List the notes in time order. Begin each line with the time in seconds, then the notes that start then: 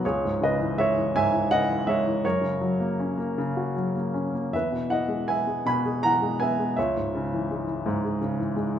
0.05 C#2 G#4 C#5
0.25 G#2
0.41 C#3 B4 D#5
0.60 E3
0.77 G#3 C#5 E5
0.97 E3
1.16 G#2 E5 G#5
1.32 E4
1.51 C#3 D#5 F#5
1.68 E3
1.87 G#3 C#5 E5
2.06 E3
2.24 F#2 A#4 C#5
2.41 C#3
2.61 F#3
2.80 A#3
3.00 C#4
3.18 A#3
3.38 C#3
3.57 F#4
3.76 F#3
3.96 A#3
4.14 C#4
4.33 A#3
4.53 E2 B4 E5
4.72 B2
4.89 E3 D#5 F#5
5.08 G#3
5.28 B3 E5 G#5
5.47 G#3
5.66 B2 G#5 B5
5.86 G#4
6.03 E3 F#5 A#5
6.22 G#3
6.40 B3 E5 G#5
6.59 G#3
6.77 C#2 C#5 E5
6.97 G#2
7.15 C#3
7.33 E3
7.51 G#3
7.67 E3
7.86 G#2
8.04 G#4
8.22 C#3
8.39 E3
8.56 G#3
8.75 E3